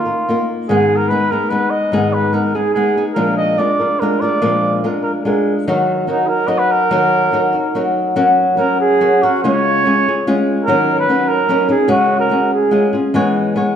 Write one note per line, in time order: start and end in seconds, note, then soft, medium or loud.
0.00 0.49 F4 medium
0.05 0.27 D#4 soft
0.05 0.27 F4 soft
0.05 0.27 A#4 soft
0.28 0.70 A#3 soft
0.28 0.70 D#4 soft
0.28 0.70 F4 medium
0.28 0.70 A#4 medium
0.69 1.10 G#2 medium
0.69 1.10 D#3 medium
0.69 1.10 G#3 medium
0.69 1.09 B3 medium
0.69 1.10 D#4 medium
0.69 0.98 G#4 medium
0.69 1.12 G#4 medium
0.97 1.10 A#4 medium
1.09 1.32 G#3 soft
1.09 1.32 B3 soft
1.09 1.31 D#4 soft
1.09 1.31 G#4 soft
1.09 1.33 B4 medium
1.31 1.49 G#3 soft
1.31 1.50 B3 soft
1.31 1.51 D#4 soft
1.31 1.51 G#4 soft
1.31 1.51 A#4 medium
1.50 1.93 G#3 medium
1.50 1.92 B3 soft
1.50 1.92 D#4 soft
1.50 1.93 G#4 medium
1.50 1.72 B4 medium
1.70 2.15 D#5 medium
1.92 2.34 G#2 medium
1.92 2.35 D#3 medium
1.92 2.32 G#3 medium
1.92 2.33 B3 medium
1.92 2.33 D#4 medium
1.92 2.34 G#4 medium
2.14 2.35 B4 medium
2.33 2.55 G#3 soft
2.33 2.54 B3 medium
2.33 2.54 D#4 soft
2.33 2.54 G#4 soft
2.33 2.57 A#4 medium
2.55 2.74 G#3 soft
2.55 2.75 B3 soft
2.55 2.75 D#4 soft
2.55 2.76 G#4 soft
2.55 2.73 G#4 medium
2.74 2.97 G#3 soft
2.74 2.97 B3 medium
2.74 2.96 D#4 medium
2.74 3.04 G#4 medium
2.74 2.96 G#4 medium
2.97 3.15 G#3 soft
2.97 3.16 B3 soft
2.97 3.16 D#4 soft
2.97 3.17 G#4 soft
3.14 3.59 A#2 medium
3.14 3.59 F3 medium
3.14 3.57 G#3 medium
3.14 3.57 D4 medium
3.14 3.58 F4 medium
3.14 3.36 A#4 medium
3.14 3.59 A#4 medium
3.38 3.60 D#5 medium
3.58 3.80 G#3 soft
3.58 3.80 D4 medium
3.58 3.79 F4 soft
3.58 3.78 A#4 soft
3.58 4.02 D5 medium
3.79 4.00 G#3 soft
3.79 4.01 D4 soft
3.79 4.01 F4 soft
3.79 4.01 A#4 soft
4.00 4.23 G#3 medium
4.00 4.23 D4 medium
4.00 4.22 F4 medium
4.00 4.22 A#4 medium
4.00 4.21 A#4 medium
4.20 4.41 D4 soft
4.20 4.41 F4 soft
4.20 4.41 A#4 soft
4.20 4.77 D5 medium
4.25 4.40 G#3 soft
4.42 4.84 A#2 medium
4.42 4.84 F3 medium
4.42 4.83 G#3 medium
4.42 4.83 D4 medium
4.42 4.84 F4 medium
4.42 4.84 A#4 medium
4.84 5.24 G#3 soft
4.84 5.24 D4 soft
4.84 5.25 F4 medium
4.84 5.26 A#4 medium
5.03 5.12 A#4 medium
5.24 5.67 G#3 soft
5.24 5.67 D4 medium
5.24 5.67 F4 medium
5.24 5.54 G#4 medium
5.24 5.69 A#4 medium
5.68 6.09 D#3 medium
5.68 6.07 F#3 medium
5.68 6.07 D#4 medium
5.68 6.08 F#4 medium
5.68 6.09 A#4 medium
6.07 6.47 F#3 soft
6.07 6.47 D#4 soft
6.07 6.30 D#4 medium
6.07 6.48 F#4 soft
6.07 6.48 A#4 medium
6.28 6.49 A#4 medium
6.48 6.90 F#3 medium
6.48 6.90 D#4 soft
6.48 6.91 F#4 medium
6.48 6.92 A#4 medium
6.48 6.60 D#5 medium
6.59 6.73 B4 medium
6.72 7.97 A#4 medium
6.91 7.33 D#3 medium
6.91 7.32 F#3 medium
6.91 7.32 D#4 medium
6.91 7.33 F#4 medium
6.91 7.34 A#4 medium
7.32 7.54 F#3 soft
7.32 7.53 D#4 medium
7.32 7.53 F#4 soft
7.32 7.52 A#4 medium
7.53 7.75 D#4 soft
7.53 7.74 F#4 soft
7.53 7.74 A#4 soft
7.75 8.15 F#3 medium
7.75 8.17 D#4 medium
7.75 8.15 F#4 medium
7.75 8.15 A#4 medium
8.16 8.56 F#3 medium
8.16 8.58 C#4 medium
8.16 8.58 F#4 medium
8.16 8.58 A#4 medium
8.57 9.00 F#3 medium
8.57 9.01 C#4 medium
8.57 9.00 F#4 medium
8.57 8.79 A#4 medium
8.57 9.01 A#4 soft
8.80 9.24 G#4 medium
9.01 9.22 F#3 medium
9.01 9.22 C#4 medium
9.01 9.22 F#4 medium
9.01 9.22 A#4 medium
9.23 9.43 C#4 soft
9.23 9.42 F#4 medium
9.23 9.43 F#4 soft
9.23 9.43 A#4 medium
9.43 9.85 C#3 medium
9.43 9.84 G#3 medium
9.43 9.86 C#4 medium
9.43 9.85 F4 medium
9.43 9.85 G#4 medium
9.43 10.43 C#5 medium
9.85 10.06 G#3 medium
9.85 10.06 C#4 medium
9.85 10.06 F4 medium
9.85 10.06 G#4 medium
10.08 10.26 C#4 soft
10.08 10.26 F4 soft
10.08 10.27 G#4 soft
10.27 10.68 G#3 medium
10.27 10.68 C#4 medium
10.27 10.68 F4 medium
10.27 10.68 G#4 medium
10.65 11.08 D#3 medium
10.65 11.08 F#3 medium
10.65 11.09 C#4 medium
10.65 11.09 D#4 medium
10.65 10.95 A#4 medium
10.69 11.09 A#4 medium
10.99 11.30 B4 medium
11.09 11.48 F#3 medium
11.09 11.49 C#4 medium
11.09 11.49 D#4 medium
11.09 11.49 A#4 medium
11.28 11.70 A#4 medium
11.49 11.70 F#3 medium
11.49 11.68 C#4 medium
11.49 11.68 D#4 medium
11.49 11.67 A#4 medium
11.69 11.87 C#4 soft
11.69 11.88 D#4 soft
11.69 11.90 G#4 medium
11.69 11.88 A#4 soft
11.88 12.31 C#3 medium
11.88 12.29 G#3 medium
11.88 12.31 C#4 medium
11.88 12.30 F#4 medium
11.88 12.20 F#4 medium
11.88 12.31 G#4 medium
12.20 12.50 A#4 medium
12.30 12.70 G#3 soft
12.30 12.71 C#4 soft
12.30 12.71 F#4 medium
12.30 12.71 G#4 soft
12.53 12.92 G#4 medium
12.71 12.94 G#3 medium
12.71 12.93 C#4 medium
12.71 12.93 F4 medium
12.71 12.92 G#4 medium
12.93 13.15 C#4 soft
12.93 13.14 F4 soft
12.93 13.13 G#4 soft
13.14 13.57 E3 medium
13.14 13.54 G#3 medium
13.14 13.55 B3 medium
13.14 13.55 G#4 medium
13.14 13.56 C#5 medium
13.56 13.76 G#3 medium
13.56 13.76 B3 medium
13.56 13.76 G#4 medium
13.56 13.76 C#5 medium